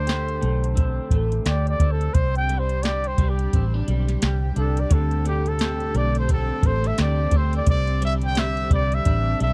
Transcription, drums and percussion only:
0.07 snare medium
0.07 closed hi-hat medium
0.28 closed hi-hat soft
0.42 closed hi-hat medium
0.64 closed hi-hat soft
0.77 kick medium
0.77 closed hi-hat medium
1.11 kick loud
1.11 closed hi-hat medium
1.32 closed hi-hat soft
1.46 snare loud
1.46 closed hi-hat medium
1.67 closed hi-hat soft
1.80 kick medium
1.80 closed hi-hat medium
2.01 closed hi-hat soft
2.15 kick loud
2.15 closed hi-hat medium
2.35 closed hi-hat soft
2.49 closed hi-hat medium
2.69 closed hi-hat soft
2.83 snare medium
2.83 closed hi-hat medium
3.04 closed hi-hat soft
3.18 kick medium
3.18 closed hi-hat medium
3.39 closed hi-hat soft
3.53 kick medium
3.53 closed hi-hat medium
3.88 closed hi-hat medium
4.08 snare soft
4.08 closed hi-hat medium
4.22 snare loud
4.22 closed hi-hat medium
4.56 closed hi-hat medium
4.77 closed hi-hat medium
4.91 kick loud
4.91 closed hi-hat medium
5.11 closed hi-hat soft
5.25 closed hi-hat medium
5.46 closed hi-hat soft
5.59 snare loud
5.59 closed hi-hat medium
5.80 closed hi-hat soft
5.95 closed hi-hat medium
6.15 closed hi-hat soft
6.29 kick medium
6.29 closed hi-hat medium
6.63 kick loud
6.63 closed hi-hat medium
6.84 snare soft
6.84 closed hi-hat medium
6.98 snare loud
6.98 closed hi-hat medium
7.31 kick medium
7.31 closed hi-hat medium
7.53 closed hi-hat soft
7.66 kick loud
7.66 closed hi-hat medium
7.87 closed hi-hat soft
8.02 closed hi-hat medium
8.22 closed hi-hat soft
8.35 snare medium
8.35 closed hi-hat medium
8.57 closed hi-hat soft
8.71 kick loud
8.71 closed hi-hat medium
8.92 closed hi-hat soft
9.05 kick medium
9.05 closed hi-hat loud
9.40 closed hi-hat medium

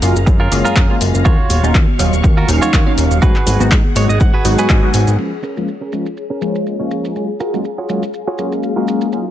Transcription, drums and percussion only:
0.02 open hi-hat medium
0.02 shaker medium
0.16 shaker soft
0.27 kick loud
0.27 shaker soft
0.52 open hi-hat loud
0.52 shaker medium
0.65 shaker soft
0.76 kick loud
0.76 clap loud
0.76 shaker soft
0.89 high conga medium
1.01 open hi-hat medium
1.01 shaker medium
1.14 shaker soft
1.26 kick loud
1.26 shaker soft
1.49 open hi-hat loud
1.49 high conga medium
1.49 shaker medium
1.63 high conga medium
1.63 shaker soft
1.63 shaker medium
1.74 kick loud
1.74 clap loud
1.74 shaker soft
1.88 high conga medium
1.99 open hi-hat medium
1.99 shaker medium
2.13 shaker medium
2.13 shaker soft
2.24 kick loud
2.24 shaker soft
2.49 open hi-hat loud
2.49 shaker medium
2.62 low conga medium
2.62 shaker medium
2.62 shaker soft
2.73 kick loud
2.73 clap loud
2.73 shaker soft
2.87 high conga medium
2.98 open hi-hat medium
2.98 shaker medium
3.11 shaker soft
3.11 shaker medium
3.22 kick loud
3.22 shaker soft
3.36 clap soft
3.47 open hi-hat loud
3.47 high conga medium
3.47 low conga medium
3.47 shaker medium
3.60 high conga medium
3.60 shaker soft
3.72 kick loud
3.72 clap loud
3.72 shaker soft
3.84 high conga medium
3.96 open hi-hat medium
3.96 shaker medium
4.09 shaker medium
4.09 shaker soft
4.21 kick loud
4.21 shaker soft
4.44 open hi-hat loud
4.44 shaker loud
4.44 shaker medium
4.58 shaker soft
4.70 kick loud
4.70 clap loud
4.70 shaker soft
4.83 high conga medium
4.94 open hi-hat medium
4.94 shaker medium
5.07 shaker soft
5.07 shaker medium
5.19 crash medium
5.19 shaker soft
5.43 shaker medium
5.57 shaker soft
5.68 shaker soft
5.92 shaker medium
6.06 shaker soft
6.17 shaker soft
6.42 shaker medium
6.55 shaker soft
6.66 shaker soft
6.91 shaker medium
7.05 shaker soft
7.16 shaker soft
7.40 shaker medium
7.54 shaker soft
7.65 shaker soft
7.89 shaker medium
8.03 shaker soft
8.14 shaker soft
8.38 shaker medium
8.52 shaker soft
8.63 shaker soft
8.88 shaker medium
9.01 shaker soft
9.12 shaker soft

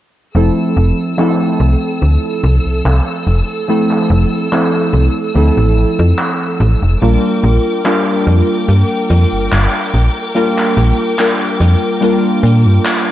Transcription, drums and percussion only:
0.35 closed hi-hat medium
0.78 closed hi-hat medium
1.19 clap loud
1.19 closed hi-hat medium
1.61 closed hi-hat medium
2.03 closed hi-hat medium
2.44 closed hi-hat medium
2.86 clap loud
2.86 closed hi-hat medium
3.27 closed hi-hat medium
3.69 closed hi-hat medium
3.91 clap soft
4.11 closed hi-hat medium
4.52 clap loud
4.52 closed hi-hat medium
4.94 closed hi-hat medium
5.35 closed hi-hat medium
5.77 closed hi-hat medium
6.19 clap loud
6.19 closed hi-hat medium
6.61 closed hi-hat medium
7.02 closed hi-hat medium
7.44 closed hi-hat medium
7.86 clap loud
7.86 closed hi-hat medium
8.28 closed hi-hat medium
8.69 closed hi-hat medium
9.11 closed hi-hat medium
9.52 clap loud
9.52 closed hi-hat medium
9.94 closed hi-hat medium
10.36 closed hi-hat medium
10.59 clap soft
10.78 closed hi-hat medium
11.18 clap loud
11.18 closed hi-hat medium
11.61 closed hi-hat medium
12.02 closed hi-hat medium
12.45 closed hi-hat medium
12.86 clap loud
12.86 closed hi-hat medium

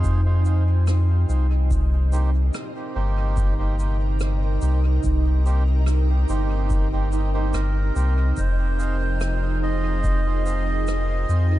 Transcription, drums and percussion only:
0.04 kick loud
0.04 shaker medium
0.45 shaker soft
0.87 cross-stick medium
0.87 shaker medium
1.30 shaker medium
1.71 kick loud
1.71 shaker medium
2.13 shaker soft
2.54 cross-stick medium
2.54 shaker medium
3.37 kick loud
3.37 shaker medium
3.79 shaker soft
4.20 cross-stick medium
4.20 shaker medium
4.62 shaker soft
5.04 kick loud
5.04 shaker medium
5.46 shaker soft
5.86 cross-stick medium
5.86 shaker medium
6.29 shaker soft
6.70 kick loud
6.70 shaker medium
7.12 shaker soft
7.54 cross-stick medium
7.54 shaker medium
7.96 shaker soft
8.37 kick loud
8.37 shaker medium
8.80 shaker soft
9.21 cross-stick medium
9.21 shaker medium
10.04 kick loud
10.04 shaker medium
10.46 shaker soft
10.88 cross-stick medium
10.88 shaker medium
11.29 shaker soft

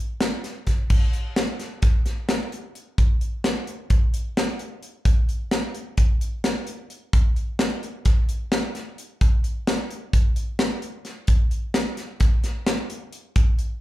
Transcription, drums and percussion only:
0.21 snare loud
0.21 closed hi-hat medium
0.44 snare soft
0.44 closed hi-hat medium
0.67 kick medium
0.67 snare soft
0.67 closed hi-hat medium
0.90 kick loud
0.90 crash medium
1.13 closed hi-hat soft
1.36 snare loud
1.36 closed hi-hat medium
1.60 snare soft
1.60 closed hi-hat medium
1.82 kick loud
1.82 snare soft
1.82 closed hi-hat medium
2.06 snare soft
2.06 closed hi-hat medium
2.29 snare loud
2.29 closed hi-hat medium
2.52 closed hi-hat medium
2.75 closed hi-hat medium
2.98 kick medium
2.98 closed hi-hat medium
3.21 closed hi-hat soft
3.44 snare medium
3.44 closed hi-hat medium
3.67 closed hi-hat medium
3.90 kick loud
3.90 closed hi-hat medium
4.14 closed hi-hat medium
4.37 snare loud
4.37 closed hi-hat medium
4.59 closed hi-hat medium
4.83 closed hi-hat medium
5.05 kick loud
5.05 closed hi-hat medium
5.29 closed hi-hat medium
5.51 snare loud
5.51 closed hi-hat medium
5.75 closed hi-hat medium
5.97 kick medium
5.97 closed hi-hat medium
6.21 closed hi-hat medium
6.44 snare loud
6.44 closed hi-hat medium
6.67 closed hi-hat medium
6.90 closed hi-hat medium
7.13 kick loud
7.13 closed hi-hat medium
7.36 closed hi-hat soft
7.59 snare loud
7.59 closed hi-hat medium
7.83 closed hi-hat medium
8.05 kick medium
8.05 snare soft
8.05 closed hi-hat medium
8.29 closed hi-hat medium
8.52 snare loud
8.52 closed hi-hat medium
8.75 snare soft
8.75 closed hi-hat medium
8.98 closed hi-hat medium
9.21 kick loud
9.21 closed hi-hat medium
9.44 closed hi-hat medium
9.67 snare loud
9.67 closed hi-hat medium
9.91 closed hi-hat medium
10.13 kick loud
10.13 closed hi-hat medium
10.36 closed hi-hat medium
10.59 snare loud
10.59 closed hi-hat medium
10.82 closed hi-hat medium
11.05 snare soft
11.05 closed hi-hat medium
11.27 kick loud
11.27 closed hi-hat medium
11.51 closed hi-hat soft
11.74 snare loud
11.74 closed hi-hat medium
11.97 snare soft
11.97 closed hi-hat medium
12.20 kick loud
12.20 snare soft
12.20 closed hi-hat medium
12.44 snare soft
12.44 closed hi-hat medium
12.67 snare loud
12.67 closed hi-hat medium
12.90 closed hi-hat medium
13.13 closed hi-hat medium
13.36 kick loud
13.36 closed hi-hat medium
13.59 closed hi-hat medium

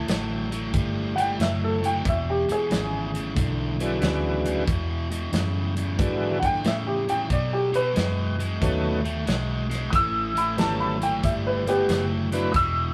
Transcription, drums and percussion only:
0.08 snare loud
0.08 closed hi-hat medium
0.52 closed hi-hat medium
0.74 kick loud
0.74 closed hi-hat medium
1.18 closed hi-hat medium
1.40 snare loud
1.40 closed hi-hat medium
1.84 closed hi-hat medium
2.05 kick loud
2.05 closed hi-hat medium
2.49 closed hi-hat medium
2.71 snare loud
2.71 closed hi-hat medium
3.15 closed hi-hat medium
3.36 kick loud
3.36 closed hi-hat medium
3.80 closed hi-hat medium
4.02 snare loud
4.02 closed hi-hat medium
4.45 closed hi-hat medium
4.67 kick loud
4.67 closed hi-hat medium
5.11 closed hi-hat medium
5.33 snare loud
5.33 closed hi-hat medium
5.77 closed hi-hat medium
5.99 kick loud
5.99 closed hi-hat medium
6.43 kick medium
6.43 closed hi-hat medium
6.64 snare loud
6.64 closed hi-hat medium
7.09 closed hi-hat medium
7.30 kick loud
7.30 closed hi-hat medium
7.74 closed hi-hat medium
7.96 snare loud
7.96 closed hi-hat medium
8.40 closed hi-hat medium
8.62 kick loud
8.62 closed hi-hat medium
9.05 closed hi-hat medium
9.27 snare loud
9.27 closed hi-hat medium
9.71 snare soft
9.71 closed hi-hat medium
9.93 kick loud
9.93 closed hi-hat medium
10.37 closed hi-hat medium
10.58 snare loud
10.58 closed hi-hat medium
11.02 closed hi-hat medium
11.23 kick loud
11.23 closed hi-hat medium
11.67 closed hi-hat medium
11.89 snare loud
11.89 closed hi-hat medium
12.32 snare soft
12.32 closed hi-hat medium
12.54 kick loud
12.54 closed hi-hat medium

